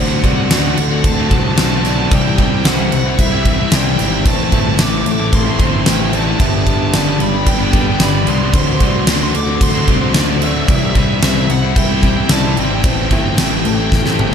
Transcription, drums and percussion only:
0.24 kick, crash
0.51 snare, crash
0.77 crash
1.04 kick, crash
1.31 kick, crash
1.58 snare, crash
1.85 snare, crash
2.11 kick, crash
2.38 kick, crash
2.65 snare, crash
2.92 crash
3.19 kick, crash
3.45 kick, crash
3.72 snare, crash
3.99 snare, crash
4.25 kick, crash
4.52 kick, crash
4.79 snare, crash
5.06 crash
5.33 kick, crash
5.59 kick, crash
5.86 snare, crash
6.13 crash
6.40 kick, crash
6.67 kick, crash
6.94 snare, crash
7.20 crash
7.46 kick, crash
7.73 kick, crash
8.00 snare, crash
8.27 crash
8.53 kick, crash
8.80 kick, crash
9.07 snare, crash
9.34 crash
9.61 kick, crash
9.88 kick, crash
10.14 snare, crash
10.42 crash
10.68 kick, crash
10.95 kick, crash
11.23 snare, crash
11.50 crash
11.76 kick, crash
12.03 kick, crash
12.29 snare, crash
12.57 crash
12.84 kick, crash
13.11 kick, crash
13.38 snare, crash
13.65 crash
13.92 kick, snare
14.06 snare
14.19 high tom

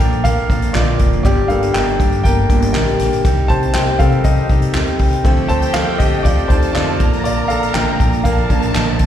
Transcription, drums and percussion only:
0.00 kick, closed hi-hat
0.12 closed hi-hat
0.25 kick, closed hi-hat
0.38 closed hi-hat
0.50 kick, closed hi-hat
0.62 closed hi-hat
0.75 snare, clap
0.99 kick, closed hi-hat
1.13 closed hi-hat
1.25 kick, closed hi-hat
1.50 closed hi-hat
1.63 closed hi-hat
1.75 snare, clap
1.88 closed hi-hat
2.00 kick, closed hi-hat
2.12 closed hi-hat
2.25 kick, closed hi-hat
2.50 kick, closed hi-hat
2.62 closed hi-hat
2.75 snare, clap
2.88 closed hi-hat
2.99 snare, closed hi-hat
3.13 closed hi-hat
3.25 kick, closed hi-hat
3.37 closed hi-hat
3.49 kick, closed hi-hat
3.63 closed hi-hat
3.75 snare, clap
3.88 closed hi-hat
4.00 kick, closed hi-hat
4.12 closed hi-hat
4.25 kick, closed hi-hat
4.37 closed hi-hat
4.49 kick, closed hi-hat
4.62 closed hi-hat
4.74 snare, clap
4.87 closed hi-hat
4.99 kick, open hi-hat
5.13 closed hi-hat
5.25 kick, closed hi-hat
5.37 closed hi-hat
5.49 closed hi-hat
5.62 closed hi-hat
5.75 snare, clap
6.00 kick, closed hi-hat
6.12 closed hi-hat
6.25 kick, closed hi-hat
6.38 closed hi-hat
6.50 kick, closed hi-hat
6.62 closed hi-hat
6.76 snare, clap
7.00 kick, closed hi-hat
7.13 closed hi-hat
7.25 closed hi-hat
7.50 closed hi-hat
7.63 closed hi-hat
7.75 snare, clap
8.00 kick, closed hi-hat
8.13 closed hi-hat
8.25 kick, closed hi-hat
8.38 closed hi-hat
8.50 kick, closed hi-hat
8.62 closed hi-hat
8.75 snare, clap
8.87 closed hi-hat
8.99 kick, closed hi-hat

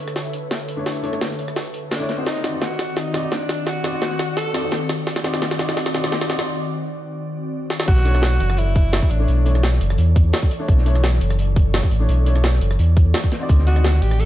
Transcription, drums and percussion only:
0.07 cross-stick, closed hi-hat
0.16 snare, closed hi-hat
0.33 closed hi-hat
0.51 snare, closed hi-hat
0.68 closed hi-hat
0.86 snare, closed hi-hat
1.04 closed hi-hat
1.13 cross-stick
1.21 snare, closed hi-hat
1.31 snare
1.39 closed hi-hat
1.48 cross-stick
1.56 snare, closed hi-hat
1.74 closed hi-hat
1.91 snare, closed hi-hat
2.09 snare, closed hi-hat
2.26 snare, closed hi-hat
2.36 snare
2.44 snare, closed hi-hat
2.62 snare, closed hi-hat
2.71 snare
2.79 snare, closed hi-hat
2.89 closed hi-hat
2.97 snare, closed hi-hat
3.14 snare, closed hi-hat
3.32 snare, closed hi-hat
3.49 snare, closed hi-hat
3.67 snare, closed hi-hat
3.84 snare, closed hi-hat
4.02 snare, closed hi-hat
4.10 snare
4.19 snare, closed hi-hat
4.37 snare, closed hi-hat
4.54 snare, closed hi-hat
4.71 snare, closed hi-hat
4.89 snare, closed hi-hat
5.07 snare, closed hi-hat
5.16 snare
5.24 snare, closed hi-hat
5.34 snare
5.42 snare, closed hi-hat
5.51 snare
5.59 snare, closed hi-hat
5.69 snare, closed hi-hat
5.77 snare, closed hi-hat
5.86 snare
5.94 snare, closed hi-hat
6.04 snare
6.12 snare, closed hi-hat
6.21 snare
6.30 snare, closed hi-hat
6.39 snare
7.70 snare
7.80 snare
7.88 kick, closed hi-hat, crash, shaker
7.96 snare
8.05 closed hi-hat
8.15 cross-stick, shaker
8.22 snare, closed hi-hat, shaker
8.32 snare
8.40 closed hi-hat
8.50 cross-stick, closed hi-hat
8.57 closed hi-hat, shaker
8.75 kick, closed hi-hat, shaker
8.93 snare, closed hi-hat, shaker
9.02 kick, shaker
9.10 closed hi-hat
9.28 closed hi-hat, shaker
9.46 closed hi-hat
9.55 cross-stick, shaker
9.63 snare, closed hi-hat, shaker
9.73 snare
9.81 closed hi-hat
9.90 cross-stick
9.98 closed hi-hat, shaker
10.16 kick, closed hi-hat, shaker
10.33 snare, closed hi-hat, shaker
10.43 kick, shaker
10.51 closed hi-hat
10.60 shaker
10.68 kick, closed hi-hat, shaker
10.78 snare
10.86 closed hi-hat
10.95 cross-stick, shaker
11.04 snare, closed hi-hat, shaker
11.13 snare
11.21 closed hi-hat
11.30 cross-stick, closed hi-hat
11.39 closed hi-hat, shaker
11.56 kick, closed hi-hat, shaker
11.74 snare, closed hi-hat, shaker
11.83 kick, shaker
11.91 closed hi-hat
12.09 closed hi-hat, shaker
12.26 closed hi-hat
12.36 cross-stick, shaker
12.44 snare, closed hi-hat, shaker
12.53 snare
12.61 closed hi-hat
12.71 cross-stick
12.79 closed hi-hat, shaker
12.96 kick, closed hi-hat, shaker
13.14 snare, closed hi-hat, shaker
13.23 kick, shaker
13.32 snare, closed hi-hat
13.41 shaker
13.49 kick, closed hi-hat, shaker
13.59 snare
13.67 closed hi-hat
13.76 cross-stick, shaker
13.84 snare, closed hi-hat, shaker
13.94 snare
14.02 closed hi-hat
14.11 cross-stick, closed hi-hat
14.20 closed hi-hat, shaker

